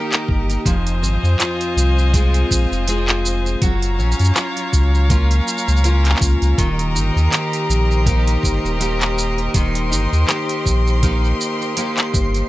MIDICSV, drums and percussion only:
0, 0, Header, 1, 3, 480
1, 0, Start_track
1, 0, Key_signature, -3, "major"
1, 0, Tempo, 740741
1, 424, Time_signature, 4, 2, 24, 8
1, 8092, End_track
2, 0, Start_track
2, 0, Title_t, "Percussion blips"
2, 2824, Note_on_c, 9, 77, 71
2, 2889, Note_off_c, 9, 77, 0
2, 6665, Note_on_c, 9, 77, 84
2, 6730, Note_off_c, 9, 77, 0
2, 8092, End_track
3, 0, Start_track
3, 0, Title_t, "Drums"
3, 81, Note_on_c, 9, 39, 77
3, 81, Note_on_c, 9, 46, 43
3, 87, Note_on_c, 9, 82, 23
3, 146, Note_off_c, 9, 39, 0
3, 146, Note_off_c, 9, 46, 0
3, 152, Note_off_c, 9, 82, 0
3, 184, Note_on_c, 9, 36, 98
3, 249, Note_off_c, 9, 36, 0
3, 321, Note_on_c, 9, 46, 30
3, 327, Note_on_c, 9, 82, 36
3, 386, Note_off_c, 9, 46, 0
3, 392, Note_off_c, 9, 82, 0
3, 425, Note_on_c, 9, 36, 113
3, 428, Note_on_c, 9, 46, 61
3, 434, Note_on_c, 9, 82, 44
3, 489, Note_off_c, 9, 36, 0
3, 492, Note_off_c, 9, 46, 0
3, 499, Note_off_c, 9, 82, 0
3, 561, Note_on_c, 9, 46, 42
3, 567, Note_on_c, 9, 82, 23
3, 626, Note_off_c, 9, 46, 0
3, 632, Note_off_c, 9, 82, 0
3, 671, Note_on_c, 9, 82, 78
3, 736, Note_off_c, 9, 82, 0
3, 808, Note_on_c, 9, 82, 34
3, 873, Note_off_c, 9, 82, 0
3, 907, Note_on_c, 9, 39, 76
3, 907, Note_on_c, 9, 46, 65
3, 913, Note_on_c, 9, 82, 44
3, 971, Note_off_c, 9, 39, 0
3, 971, Note_off_c, 9, 46, 0
3, 977, Note_off_c, 9, 82, 0
3, 1041, Note_on_c, 9, 46, 42
3, 1047, Note_on_c, 9, 82, 22
3, 1106, Note_off_c, 9, 46, 0
3, 1112, Note_off_c, 9, 82, 0
3, 1153, Note_on_c, 9, 82, 85
3, 1217, Note_off_c, 9, 82, 0
3, 1287, Note_on_c, 9, 82, 32
3, 1352, Note_off_c, 9, 82, 0
3, 1384, Note_on_c, 9, 36, 121
3, 1386, Note_on_c, 9, 46, 68
3, 1392, Note_on_c, 9, 82, 46
3, 1449, Note_off_c, 9, 36, 0
3, 1451, Note_off_c, 9, 46, 0
3, 1457, Note_off_c, 9, 82, 0
3, 1518, Note_on_c, 9, 46, 43
3, 1524, Note_on_c, 9, 82, 24
3, 1583, Note_off_c, 9, 46, 0
3, 1589, Note_off_c, 9, 82, 0
3, 1624, Note_on_c, 9, 36, 57
3, 1630, Note_on_c, 9, 82, 83
3, 1689, Note_off_c, 9, 36, 0
3, 1695, Note_off_c, 9, 82, 0
3, 1766, Note_on_c, 9, 82, 33
3, 1831, Note_off_c, 9, 82, 0
3, 1863, Note_on_c, 9, 46, 69
3, 1869, Note_on_c, 9, 82, 45
3, 1928, Note_off_c, 9, 46, 0
3, 1934, Note_off_c, 9, 82, 0
3, 1998, Note_on_c, 9, 39, 81
3, 1998, Note_on_c, 9, 46, 40
3, 2004, Note_on_c, 9, 82, 23
3, 2062, Note_off_c, 9, 39, 0
3, 2062, Note_off_c, 9, 46, 0
3, 2068, Note_off_c, 9, 82, 0
3, 2109, Note_on_c, 9, 82, 87
3, 2174, Note_off_c, 9, 82, 0
3, 2245, Note_on_c, 9, 82, 36
3, 2310, Note_off_c, 9, 82, 0
3, 2344, Note_on_c, 9, 36, 116
3, 2344, Note_on_c, 9, 46, 59
3, 2350, Note_on_c, 9, 82, 46
3, 2408, Note_off_c, 9, 46, 0
3, 2409, Note_off_c, 9, 36, 0
3, 2414, Note_off_c, 9, 82, 0
3, 2478, Note_on_c, 9, 46, 42
3, 2484, Note_on_c, 9, 82, 23
3, 2543, Note_off_c, 9, 46, 0
3, 2549, Note_off_c, 9, 82, 0
3, 2590, Note_on_c, 9, 82, 32
3, 2654, Note_off_c, 9, 82, 0
3, 2669, Note_on_c, 9, 82, 48
3, 2717, Note_on_c, 9, 46, 28
3, 2723, Note_off_c, 9, 82, 0
3, 2723, Note_on_c, 9, 82, 35
3, 2750, Note_off_c, 9, 82, 0
3, 2750, Note_on_c, 9, 82, 59
3, 2782, Note_off_c, 9, 46, 0
3, 2815, Note_off_c, 9, 82, 0
3, 2824, Note_on_c, 9, 39, 77
3, 2824, Note_on_c, 9, 46, 64
3, 2830, Note_on_c, 9, 82, 49
3, 2889, Note_off_c, 9, 39, 0
3, 2889, Note_off_c, 9, 46, 0
3, 2895, Note_off_c, 9, 82, 0
3, 2959, Note_on_c, 9, 46, 43
3, 2965, Note_on_c, 9, 82, 20
3, 3024, Note_off_c, 9, 46, 0
3, 3030, Note_off_c, 9, 82, 0
3, 3064, Note_on_c, 9, 36, 60
3, 3067, Note_on_c, 9, 82, 85
3, 3129, Note_off_c, 9, 36, 0
3, 3132, Note_off_c, 9, 82, 0
3, 3206, Note_on_c, 9, 82, 31
3, 3271, Note_off_c, 9, 82, 0
3, 3304, Note_on_c, 9, 36, 126
3, 3305, Note_on_c, 9, 46, 65
3, 3311, Note_on_c, 9, 82, 47
3, 3368, Note_off_c, 9, 36, 0
3, 3370, Note_off_c, 9, 46, 0
3, 3376, Note_off_c, 9, 82, 0
3, 3439, Note_on_c, 9, 46, 41
3, 3445, Note_on_c, 9, 82, 23
3, 3504, Note_off_c, 9, 46, 0
3, 3510, Note_off_c, 9, 82, 0
3, 3549, Note_on_c, 9, 82, 78
3, 3614, Note_off_c, 9, 82, 0
3, 3615, Note_on_c, 9, 82, 62
3, 3680, Note_off_c, 9, 82, 0
3, 3684, Note_on_c, 9, 82, 48
3, 3737, Note_off_c, 9, 82, 0
3, 3737, Note_on_c, 9, 82, 36
3, 3785, Note_on_c, 9, 46, 60
3, 3791, Note_off_c, 9, 82, 0
3, 3791, Note_on_c, 9, 82, 47
3, 3850, Note_off_c, 9, 46, 0
3, 3856, Note_off_c, 9, 82, 0
3, 3920, Note_on_c, 9, 39, 32
3, 3920, Note_on_c, 9, 46, 38
3, 3926, Note_on_c, 9, 82, 21
3, 3945, Note_off_c, 9, 39, 0
3, 3945, Note_on_c, 9, 39, 47
3, 3984, Note_off_c, 9, 46, 0
3, 3990, Note_off_c, 9, 39, 0
3, 3990, Note_on_c, 9, 39, 54
3, 3991, Note_off_c, 9, 82, 0
3, 3996, Note_on_c, 9, 82, 18
3, 4024, Note_on_c, 9, 36, 97
3, 4029, Note_off_c, 9, 82, 0
3, 4029, Note_on_c, 9, 82, 89
3, 4055, Note_off_c, 9, 39, 0
3, 4089, Note_off_c, 9, 36, 0
3, 4094, Note_off_c, 9, 82, 0
3, 4160, Note_on_c, 9, 46, 32
3, 4166, Note_on_c, 9, 82, 34
3, 4225, Note_off_c, 9, 46, 0
3, 4231, Note_off_c, 9, 82, 0
3, 4264, Note_on_c, 9, 36, 108
3, 4267, Note_on_c, 9, 46, 64
3, 4273, Note_on_c, 9, 82, 44
3, 4329, Note_off_c, 9, 36, 0
3, 4332, Note_off_c, 9, 46, 0
3, 4338, Note_off_c, 9, 82, 0
3, 4401, Note_on_c, 9, 46, 43
3, 4407, Note_on_c, 9, 82, 21
3, 4466, Note_off_c, 9, 46, 0
3, 4472, Note_off_c, 9, 82, 0
3, 4511, Note_on_c, 9, 82, 73
3, 4576, Note_off_c, 9, 82, 0
3, 4648, Note_on_c, 9, 82, 33
3, 4713, Note_off_c, 9, 82, 0
3, 4746, Note_on_c, 9, 39, 75
3, 4746, Note_on_c, 9, 46, 62
3, 4752, Note_on_c, 9, 82, 44
3, 4811, Note_off_c, 9, 39, 0
3, 4811, Note_off_c, 9, 46, 0
3, 4817, Note_off_c, 9, 82, 0
3, 4881, Note_on_c, 9, 46, 43
3, 4887, Note_on_c, 9, 82, 22
3, 4946, Note_off_c, 9, 46, 0
3, 4952, Note_off_c, 9, 82, 0
3, 4993, Note_on_c, 9, 82, 83
3, 5058, Note_off_c, 9, 82, 0
3, 5128, Note_on_c, 9, 82, 31
3, 5192, Note_off_c, 9, 82, 0
3, 5223, Note_on_c, 9, 36, 115
3, 5227, Note_on_c, 9, 46, 64
3, 5233, Note_on_c, 9, 82, 48
3, 5288, Note_off_c, 9, 36, 0
3, 5292, Note_off_c, 9, 46, 0
3, 5298, Note_off_c, 9, 82, 0
3, 5362, Note_on_c, 9, 46, 45
3, 5368, Note_on_c, 9, 82, 22
3, 5427, Note_off_c, 9, 46, 0
3, 5433, Note_off_c, 9, 82, 0
3, 5464, Note_on_c, 9, 36, 57
3, 5474, Note_on_c, 9, 82, 74
3, 5528, Note_off_c, 9, 36, 0
3, 5539, Note_off_c, 9, 82, 0
3, 5609, Note_on_c, 9, 82, 31
3, 5674, Note_off_c, 9, 82, 0
3, 5707, Note_on_c, 9, 46, 64
3, 5713, Note_on_c, 9, 82, 47
3, 5772, Note_off_c, 9, 46, 0
3, 5778, Note_off_c, 9, 82, 0
3, 5840, Note_on_c, 9, 39, 66
3, 5840, Note_on_c, 9, 46, 42
3, 5846, Note_on_c, 9, 82, 22
3, 5905, Note_off_c, 9, 39, 0
3, 5905, Note_off_c, 9, 46, 0
3, 5911, Note_off_c, 9, 82, 0
3, 5951, Note_on_c, 9, 82, 84
3, 6016, Note_off_c, 9, 82, 0
3, 6080, Note_on_c, 9, 46, 28
3, 6145, Note_off_c, 9, 46, 0
3, 6184, Note_on_c, 9, 36, 108
3, 6184, Note_on_c, 9, 46, 67
3, 6190, Note_on_c, 9, 82, 42
3, 6249, Note_off_c, 9, 36, 0
3, 6249, Note_off_c, 9, 46, 0
3, 6255, Note_off_c, 9, 82, 0
3, 6320, Note_on_c, 9, 46, 45
3, 6326, Note_on_c, 9, 82, 21
3, 6384, Note_off_c, 9, 46, 0
3, 6390, Note_off_c, 9, 82, 0
3, 6430, Note_on_c, 9, 82, 69
3, 6495, Note_off_c, 9, 82, 0
3, 6566, Note_on_c, 9, 82, 33
3, 6631, Note_off_c, 9, 82, 0
3, 6665, Note_on_c, 9, 39, 70
3, 6665, Note_on_c, 9, 46, 63
3, 6671, Note_on_c, 9, 82, 44
3, 6730, Note_off_c, 9, 39, 0
3, 6730, Note_off_c, 9, 46, 0
3, 6736, Note_off_c, 9, 82, 0
3, 6799, Note_on_c, 9, 46, 42
3, 6805, Note_on_c, 9, 82, 19
3, 6864, Note_off_c, 9, 46, 0
3, 6870, Note_off_c, 9, 82, 0
3, 6905, Note_on_c, 9, 36, 56
3, 6911, Note_on_c, 9, 82, 73
3, 6970, Note_off_c, 9, 36, 0
3, 6976, Note_off_c, 9, 82, 0
3, 7046, Note_on_c, 9, 82, 32
3, 7110, Note_off_c, 9, 82, 0
3, 7146, Note_on_c, 9, 36, 125
3, 7147, Note_on_c, 9, 46, 63
3, 7153, Note_on_c, 9, 82, 42
3, 7211, Note_off_c, 9, 36, 0
3, 7211, Note_off_c, 9, 46, 0
3, 7217, Note_off_c, 9, 82, 0
3, 7288, Note_on_c, 9, 82, 22
3, 7352, Note_off_c, 9, 82, 0
3, 7392, Note_on_c, 9, 82, 74
3, 7457, Note_off_c, 9, 82, 0
3, 7528, Note_on_c, 9, 82, 29
3, 7593, Note_off_c, 9, 82, 0
3, 7625, Note_on_c, 9, 46, 71
3, 7631, Note_on_c, 9, 82, 43
3, 7690, Note_off_c, 9, 46, 0
3, 7696, Note_off_c, 9, 82, 0
3, 7761, Note_on_c, 9, 39, 72
3, 7761, Note_on_c, 9, 46, 44
3, 7767, Note_on_c, 9, 82, 23
3, 7826, Note_off_c, 9, 39, 0
3, 7826, Note_off_c, 9, 46, 0
3, 7832, Note_off_c, 9, 82, 0
3, 7866, Note_on_c, 9, 36, 99
3, 7870, Note_on_c, 9, 82, 78
3, 7931, Note_off_c, 9, 36, 0
3, 7935, Note_off_c, 9, 82, 0
3, 7998, Note_on_c, 9, 46, 31
3, 8004, Note_on_c, 9, 82, 31
3, 8063, Note_off_c, 9, 46, 0
3, 8069, Note_off_c, 9, 82, 0
3, 8092, End_track
0, 0, End_of_file